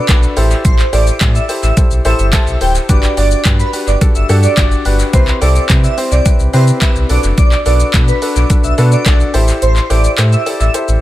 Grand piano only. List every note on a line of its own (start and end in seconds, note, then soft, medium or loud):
0.08 0.32 D4 medium
0.08 0.33 F#4 medium
0.08 0.33 A4 medium
0.08 0.33 B4 loud
0.37 0.84 E4 loud
0.37 0.84 G4 medium
0.37 0.84 A4 medium
0.37 0.85 C5 loud
0.93 1.17 E4 medium
0.93 1.17 G4 medium
0.93 1.17 A4 medium
0.93 1.17 C5 medium
1.21 1.45 E4 medium
1.21 1.45 G4 medium
1.21 1.45 A4 medium
1.21 1.45 D5 medium
1.49 1.73 E4 medium
1.49 1.73 G4 medium
1.49 1.73 A4 medium
1.49 1.73 C5 medium
1.77 2.01 E4 medium
1.77 2.01 G4 medium
1.77 2.01 A4 medium
1.77 2.01 C5 medium
2.05 2.29 E4 loud
2.05 2.29 G4 medium
2.05 2.29 A4 medium
2.05 2.29 C5 loud
2.33 2.57 E4 loud
2.33 2.57 G4 medium
2.33 2.57 A4 medium
2.33 2.57 C5 loud
2.61 2.85 E4 medium
2.61 2.85 G4 medium
2.61 2.85 A4 medium
2.61 2.85 C5 medium
2.89 3.13 D4 loud
2.89 3.13 F#4 medium
2.89 3.13 G4 medium
2.89 3.13 B4 loud
3.17 3.41 D4 medium
3.17 3.41 F#4 medium
3.17 3.41 G4 medium
3.17 3.41 D5 medium
3.45 3.69 D4 medium
3.45 3.69 F#4 medium
3.45 3.69 G4 medium
3.45 3.69 B4 medium
3.73 3.97 D4 medium
3.73 3.97 F#4 medium
3.73 3.97 G4 medium
3.73 3.97 B4 medium
4.01 4.25 D4 medium
4.01 4.25 F#4 medium
4.01 4.25 G4 medium
4.01 4.25 A4 medium
4.29 4.53 D4 medium
4.29 4.53 F#4 medium
4.29 4.53 G4 medium
4.29 4.53 A4 loud
4.57 4.81 D4 loud
4.57 4.81 F#4 medium
4.57 4.81 G4 medium
4.57 4.81 D5 loud
4.85 5.09 D4 medium
4.85 5.09 F#4 medium
4.85 5.09 G4 medium
4.85 5.09 B4 loud
5.13 5.37 C4 loud
5.13 5.37 E4 medium
5.13 5.37 G4 medium
5.13 5.37 B4 loud
5.41 5.65 C4 medium
5.41 5.65 E4 medium
5.41 5.65 G4 medium
5.41 5.65 A4 medium
5.69 5.93 C4 medium
5.69 5.93 E4 medium
5.69 5.93 G4 medium
5.69 5.93 B4 medium
5.97 6.21 C4 medium
5.97 6.21 E4 medium
5.97 6.21 G4 medium
5.97 6.21 C5 medium
6.25 6.49 C4 medium
6.25 6.49 E4 medium
6.25 6.49 G4 medium
6.25 6.50 B4 medium
6.53 6.77 C4 loud
6.53 6.77 E4 medium
6.53 6.77 G4 medium
6.53 6.78 B4 loud
6.81 7.05 C4 loud
6.81 7.05 E4 medium
6.81 7.06 G4 medium
6.81 7.06 B4 loud
7.10 7.57 D4 medium
7.10 7.57 F#4 medium
7.10 7.57 A4 medium
7.10 7.58 B4 medium
7.65 7.89 D4 medium
7.65 7.90 F#4 medium
7.65 7.90 A4 medium
7.65 7.90 B4 medium
7.93 8.17 D4 medium
7.93 8.18 F#4 medium
7.93 8.18 A4 medium
7.93 8.18 B4 medium
8.22 8.46 D4 medium
8.22 8.46 F#4 medium
8.22 8.46 A4 medium
8.22 8.46 B4 medium
8.50 8.74 D4 medium
8.50 8.74 F#4 medium
8.50 8.74 A4 medium
8.50 8.74 B4 medium
8.78 9.02 D4 loud
8.78 9.02 F#4 medium
8.78 9.02 A4 medium
8.78 9.02 B4 loud
9.06 9.30 D4 loud
9.06 9.30 F#4 medium
9.06 9.30 A4 medium
9.06 9.30 D5 loud
9.34 9.81 E4 loud
9.34 9.82 G4 medium
9.34 9.82 A4 medium
9.34 9.82 C5 loud
9.90 10.14 E4 medium
9.90 10.14 G4 medium
9.90 10.14 A4 medium
9.90 10.14 C5 medium
10.18 10.42 E4 medium
10.18 10.42 G4 medium
10.18 10.42 A4 medium
10.18 10.42 C5 medium
10.46 10.70 E4 medium
10.46 10.70 G4 medium
10.46 10.70 A4 medium
10.46 10.70 D5 medium
10.74 10.98 E4 medium
10.74 10.98 G4 medium
10.74 10.98 A4 medium
10.74 10.98 C5 medium